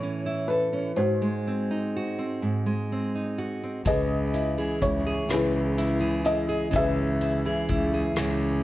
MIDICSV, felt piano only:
0, 0, Header, 1, 2, 480
1, 0, Start_track
1, 0, Tempo, 958466
1, 486, Time_signature, 6, 3, 24, 8
1, 4323, End_track
2, 0, Start_track
2, 0, Title_t, "Felt piano"
2, 0, Program_c, 0, 0
2, 0, Note_on_c, 0, 73, 74
2, 240, Note_on_c, 0, 71, 70
2, 259, Note_off_c, 0, 73, 0
2, 485, Note_on_c, 0, 72, 67
2, 490, Note_off_c, 0, 71, 0
2, 494, Note_on_c, 0, 66, 44
2, 1671, Note_off_c, 0, 72, 0
2, 1676, Note_off_c, 0, 66, 0
2, 1939, Note_on_c, 0, 75, 71
2, 1945, Note_on_c, 0, 71, 50
2, 1946, Note_on_c, 0, 68, 50
2, 2415, Note_on_c, 0, 73, 64
2, 2431, Note_off_c, 0, 75, 0
2, 2640, Note_off_c, 0, 68, 0
2, 2640, Note_off_c, 0, 71, 0
2, 2658, Note_on_c, 0, 71, 66
2, 2662, Note_off_c, 0, 73, 0
2, 2671, Note_on_c, 0, 64, 50
2, 2673, Note_on_c, 0, 68, 51
2, 3134, Note_on_c, 0, 75, 79
2, 3150, Note_off_c, 0, 71, 0
2, 3362, Note_off_c, 0, 64, 0
2, 3363, Note_off_c, 0, 68, 0
2, 3380, Note_off_c, 0, 75, 0
2, 3385, Note_on_c, 0, 76, 86
2, 3390, Note_on_c, 0, 71, 57
2, 3393, Note_on_c, 0, 68, 58
2, 4313, Note_off_c, 0, 76, 0
2, 4315, Note_off_c, 0, 71, 0
2, 4317, Note_off_c, 0, 68, 0
2, 4323, End_track
0, 0, End_of_file